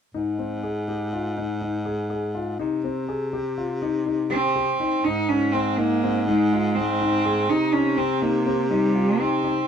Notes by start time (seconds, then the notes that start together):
0.14 G#2 D#4
0.39 C4
0.63 G#4
0.88 G4
1.13 F4
1.37 D#4
1.61 D#4
1.85 G#4
2.10 G#4
2.35 F4
2.59 C3 D#4
2.84 C4
3.09 G#4
3.33 G4
3.58 F4
3.82 D#4
4.06 D#4
4.30 C4 G4
4.56 G4
4.80 D#4
5.04 G#2 D#4
5.29 C#4 D#4
5.52 C4
5.77 A#3 D#4
6.04 C4
6.27 G#3 D#4
6.52 F4
6.75 C4 D#4
7.01 D#4
7.25 G#4
7.49 C3 D#4
7.72 C#4 D#4
7.97 C4
8.21 A#3 D#4
8.46 C4
8.71 G3 D#4
8.95 F4
9.20 C4 D#4
9.44 D#4